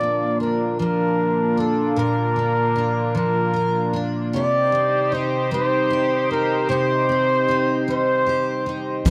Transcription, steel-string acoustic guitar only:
0, 0, Header, 1, 2, 480
1, 0, Start_track
1, 0, Tempo, 787092
1, 1203, Time_signature, 6, 3, 24, 8
1, 5551, End_track
2, 0, Start_track
2, 0, Title_t, "Steel-string acoustic guitar"
2, 0, Program_c, 0, 25
2, 0, Note_on_c, 0, 46, 62
2, 0, Note_on_c, 0, 53, 81
2, 0, Note_on_c, 0, 65, 63
2, 0, Note_on_c, 0, 70, 50
2, 3, Note_on_c, 0, 58, 47
2, 242, Note_off_c, 0, 65, 0
2, 244, Note_on_c, 0, 62, 51
2, 481, Note_off_c, 0, 53, 0
2, 483, Note_on_c, 0, 53, 56
2, 725, Note_off_c, 0, 70, 0
2, 953, Note_off_c, 0, 62, 0
2, 960, Note_on_c, 0, 62, 54
2, 1191, Note_off_c, 0, 46, 0
2, 1197, Note_on_c, 0, 46, 64
2, 1202, Note_on_c, 0, 70, 47
2, 1432, Note_off_c, 0, 58, 0
2, 1439, Note_on_c, 0, 58, 46
2, 1674, Note_off_c, 0, 62, 0
2, 1681, Note_on_c, 0, 62, 55
2, 1911, Note_off_c, 0, 53, 0
2, 1919, Note_on_c, 0, 53, 58
2, 2149, Note_off_c, 0, 70, 0
2, 2156, Note_on_c, 0, 70, 57
2, 2391, Note_off_c, 0, 62, 0
2, 2399, Note_on_c, 0, 62, 53
2, 2640, Note_off_c, 0, 70, 0
2, 2641, Note_off_c, 0, 46, 0
2, 2643, Note_on_c, 0, 48, 70
2, 2647, Note_on_c, 0, 67, 55
2, 2689, Note_off_c, 0, 53, 0
2, 2689, Note_off_c, 0, 62, 0
2, 2690, Note_off_c, 0, 58, 0
2, 2880, Note_on_c, 0, 60, 49
2, 3121, Note_on_c, 0, 63, 55
2, 3362, Note_on_c, 0, 55, 64
2, 3598, Note_off_c, 0, 67, 0
2, 3600, Note_on_c, 0, 67, 58
2, 3838, Note_off_c, 0, 63, 0
2, 3846, Note_on_c, 0, 63, 54
2, 4071, Note_off_c, 0, 48, 0
2, 4078, Note_on_c, 0, 48, 63
2, 4081, Note_off_c, 0, 67, 0
2, 4084, Note_on_c, 0, 67, 58
2, 4321, Note_off_c, 0, 60, 0
2, 4324, Note_on_c, 0, 60, 51
2, 4556, Note_off_c, 0, 63, 0
2, 4564, Note_on_c, 0, 63, 53
2, 4802, Note_off_c, 0, 55, 0
2, 4804, Note_on_c, 0, 55, 60
2, 5038, Note_off_c, 0, 67, 0
2, 5040, Note_on_c, 0, 67, 59
2, 5275, Note_off_c, 0, 63, 0
2, 5282, Note_on_c, 0, 63, 54
2, 5517, Note_off_c, 0, 55, 0
2, 5520, Note_on_c, 0, 53, 70
2, 5522, Note_off_c, 0, 48, 0
2, 5523, Note_off_c, 0, 67, 0
2, 5526, Note_on_c, 0, 69, 46
2, 5551, Note_off_c, 0, 53, 0
2, 5551, Note_off_c, 0, 60, 0
2, 5551, Note_off_c, 0, 63, 0
2, 5551, Note_off_c, 0, 69, 0
2, 5551, End_track
0, 0, End_of_file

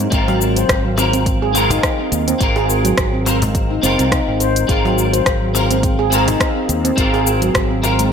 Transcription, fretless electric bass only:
0, 0, Header, 1, 2, 480
1, 0, Start_track
1, 0, Tempo, 571429
1, 100, Time_signature, 4, 2, 24, 8
1, 6825, End_track
2, 0, Start_track
2, 0, Title_t, "Fretless electric bass"
2, 0, Program_c, 0, 35
2, 100, Note_on_c, 0, 32, 98
2, 526, Note_off_c, 0, 32, 0
2, 579, Note_on_c, 0, 32, 96
2, 1486, Note_off_c, 0, 32, 0
2, 1778, Note_on_c, 0, 39, 85
2, 1952, Note_off_c, 0, 39, 0
2, 2020, Note_on_c, 0, 32, 101
2, 2446, Note_off_c, 0, 32, 0
2, 2500, Note_on_c, 0, 32, 93
2, 3166, Note_off_c, 0, 32, 0
2, 3218, Note_on_c, 0, 30, 100
2, 3310, Note_off_c, 0, 30, 0
2, 3350, Note_on_c, 0, 36, 82
2, 3509, Note_off_c, 0, 36, 0
2, 3592, Note_on_c, 0, 32, 95
2, 3886, Note_off_c, 0, 32, 0
2, 3939, Note_on_c, 0, 32, 99
2, 4366, Note_off_c, 0, 32, 0
2, 4418, Note_on_c, 0, 32, 96
2, 5326, Note_off_c, 0, 32, 0
2, 5619, Note_on_c, 0, 39, 88
2, 5792, Note_off_c, 0, 39, 0
2, 5859, Note_on_c, 0, 32, 101
2, 6286, Note_off_c, 0, 32, 0
2, 6338, Note_on_c, 0, 32, 92
2, 6825, Note_off_c, 0, 32, 0
2, 6825, End_track
0, 0, End_of_file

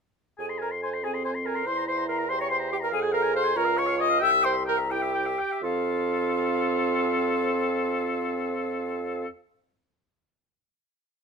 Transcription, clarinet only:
0, 0, Header, 1, 2, 480
1, 0, Start_track
1, 0, Tempo, 424028
1, 440, Time_signature, 6, 3, 24, 8
1, 3793, Tempo, 441176
1, 5233, Tempo, 479233
1, 11808, End_track
2, 0, Start_track
2, 0, Title_t, "Clarinet"
2, 0, Program_c, 0, 71
2, 437, Note_on_c, 0, 68, 55
2, 665, Note_off_c, 0, 68, 0
2, 692, Note_on_c, 0, 70, 51
2, 800, Note_off_c, 0, 70, 0
2, 925, Note_on_c, 0, 72, 57
2, 1163, Note_off_c, 0, 72, 0
2, 1170, Note_on_c, 0, 68, 61
2, 1404, Note_off_c, 0, 68, 0
2, 1410, Note_on_c, 0, 72, 53
2, 1516, Note_off_c, 0, 72, 0
2, 1638, Note_on_c, 0, 70, 63
2, 1877, Note_on_c, 0, 72, 70
2, 1894, Note_off_c, 0, 70, 0
2, 2118, Note_off_c, 0, 72, 0
2, 2126, Note_on_c, 0, 72, 69
2, 2352, Note_off_c, 0, 72, 0
2, 2359, Note_on_c, 0, 70, 70
2, 2597, Note_on_c, 0, 72, 78
2, 2614, Note_off_c, 0, 70, 0
2, 2715, Note_off_c, 0, 72, 0
2, 2723, Note_on_c, 0, 73, 70
2, 2830, Note_off_c, 0, 73, 0
2, 2837, Note_on_c, 0, 72, 74
2, 3070, Note_off_c, 0, 72, 0
2, 3080, Note_on_c, 0, 67, 73
2, 3133, Note_off_c, 0, 67, 0
2, 3205, Note_on_c, 0, 70, 73
2, 3315, Note_on_c, 0, 68, 84
2, 3332, Note_off_c, 0, 70, 0
2, 3540, Note_off_c, 0, 68, 0
2, 3546, Note_on_c, 0, 70, 84
2, 3785, Note_off_c, 0, 70, 0
2, 3800, Note_on_c, 0, 72, 86
2, 4036, Note_on_c, 0, 70, 91
2, 4052, Note_off_c, 0, 72, 0
2, 4262, Note_on_c, 0, 73, 83
2, 4279, Note_off_c, 0, 70, 0
2, 4505, Note_on_c, 0, 75, 88
2, 4521, Note_off_c, 0, 73, 0
2, 4743, Note_on_c, 0, 76, 95
2, 4760, Note_off_c, 0, 75, 0
2, 4986, Note_off_c, 0, 76, 0
2, 4993, Note_on_c, 0, 72, 82
2, 5103, Note_off_c, 0, 72, 0
2, 5239, Note_on_c, 0, 70, 84
2, 5342, Note_off_c, 0, 70, 0
2, 5458, Note_on_c, 0, 67, 77
2, 6170, Note_off_c, 0, 67, 0
2, 6189, Note_on_c, 0, 65, 82
2, 9830, Note_off_c, 0, 65, 0
2, 11808, End_track
0, 0, End_of_file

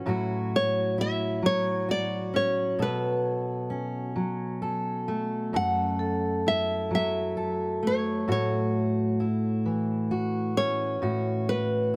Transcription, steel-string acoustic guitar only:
0, 0, Header, 1, 2, 480
1, 0, Start_track
1, 0, Tempo, 913242
1, 30, Time_signature, 6, 3, 24, 8
1, 6286, End_track
2, 0, Start_track
2, 0, Title_t, "Steel-string acoustic guitar"
2, 0, Program_c, 0, 25
2, 0, Note_on_c, 0, 61, 47
2, 30, Note_on_c, 0, 45, 62
2, 33, Note_on_c, 0, 54, 57
2, 41, Note_on_c, 0, 64, 51
2, 46, Note_on_c, 0, 66, 54
2, 509, Note_off_c, 0, 64, 0
2, 515, Note_on_c, 0, 64, 52
2, 746, Note_off_c, 0, 54, 0
2, 748, Note_on_c, 0, 54, 60
2, 988, Note_off_c, 0, 66, 0
2, 990, Note_on_c, 0, 66, 54
2, 1226, Note_off_c, 0, 61, 0
2, 1228, Note_on_c, 0, 61, 50
2, 1438, Note_off_c, 0, 45, 0
2, 1442, Note_off_c, 0, 64, 0
2, 1464, Note_on_c, 0, 47, 64
2, 1465, Note_off_c, 0, 66, 0
2, 1467, Note_on_c, 0, 69, 56
2, 1480, Note_off_c, 0, 61, 0
2, 1945, Note_on_c, 0, 61, 46
2, 2182, Note_off_c, 0, 54, 0
2, 2184, Note_on_c, 0, 54, 54
2, 2425, Note_off_c, 0, 69, 0
2, 2427, Note_on_c, 0, 69, 51
2, 2670, Note_on_c, 0, 57, 51
2, 2907, Note_off_c, 0, 47, 0
2, 2907, Note_on_c, 0, 42, 58
2, 2909, Note_off_c, 0, 69, 0
2, 2912, Note_on_c, 0, 69, 55
2, 3396, Note_off_c, 0, 61, 0
2, 3398, Note_on_c, 0, 64, 50
2, 3414, Note_off_c, 0, 54, 0
2, 3630, Note_on_c, 0, 54, 55
2, 3870, Note_off_c, 0, 69, 0
2, 3873, Note_on_c, 0, 69, 52
2, 4111, Note_off_c, 0, 57, 0
2, 4113, Note_on_c, 0, 57, 45
2, 4348, Note_off_c, 0, 42, 0
2, 4350, Note_on_c, 0, 45, 61
2, 4352, Note_off_c, 0, 69, 0
2, 4354, Note_on_c, 0, 66, 63
2, 4370, Note_off_c, 0, 64, 0
2, 4835, Note_on_c, 0, 64, 49
2, 4851, Note_off_c, 0, 54, 0
2, 5075, Note_on_c, 0, 52, 54
2, 5307, Note_off_c, 0, 66, 0
2, 5313, Note_on_c, 0, 66, 54
2, 5552, Note_off_c, 0, 57, 0
2, 5558, Note_on_c, 0, 61, 45
2, 5761, Note_off_c, 0, 45, 0
2, 5764, Note_off_c, 0, 64, 0
2, 5789, Note_off_c, 0, 66, 0
2, 5791, Note_on_c, 0, 45, 63
2, 5795, Note_on_c, 0, 66, 57
2, 6286, Note_off_c, 0, 45, 0
2, 6286, Note_off_c, 0, 52, 0
2, 6286, Note_off_c, 0, 61, 0
2, 6286, Note_off_c, 0, 66, 0
2, 6286, End_track
0, 0, End_of_file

